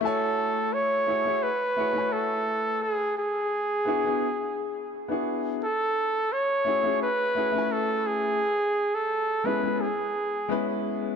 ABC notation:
X:1
M:4/4
L:1/16
Q:"Swing 16ths" 1/4=86
K:F#m
V:1 name="Flugelhorn"
A4 c4 B4 A4 | G2 G12 z2 | A4 c4 B4 A2 G2- | G3 A3 B2 G6 z2 |]
V:2 name="Grand piano"
[A,EFcg]6 [A,EFGc] [A,EFGc] z2 [A,EFGc] [A,EFcg]4- [A,EFcg] | z6 [B,DEFG] [B,DEFG] z4 z [B,DEFG]3 | z6 [A,CEFG] [A,CEFG] z2 [A,CEFG] [A,CEFg]4- [A,CEFg] | z6 [G,B,CEG] [G,B,CEG] z4 [G,B,CEB]4 |]